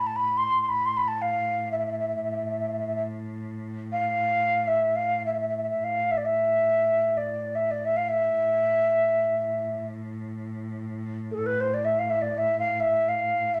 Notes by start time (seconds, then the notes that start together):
Already playing: A2
0.07 A5
0.16 B5
0.37 C6
0.62 C6
0.69 B5
0.86 C6
0.97 B5
1.08 A5
1.22 F5
1.72 E5
1.78 E5
1.86 E5
1.92 E5
1.99 E5
2.08 E5
2.15 E5
2.23 E5
2.31 E5
2.36 E5
2.45 E5
2.50 E5
2.60 E5
2.68 E5
2.73 E5
2.79 E5
2.87 E5
2.95 E5
3.92 F5
4.68 E5
4.96 F5
5.26 E5
5.34 E5
5.40 E5
5.48 E5
5.57 E5
5.63 E5
5.69 E5
5.84 F5
6.11 E5
6.17 D5
6.25 E5
7.17 D5
7.55 E5
7.71 D5
7.85 E5
7.97 F5
8.09 E5
8.36 A2
11.31 G#4 A4
11.38 A4
11.46 B4
11.61 C5
11.74 D5
11.85 E5
11.99 F5
12.10 E5
12.22 D5
12.38 E5
12.59 F5
12.80 E5
13.09 F5
13.54 E5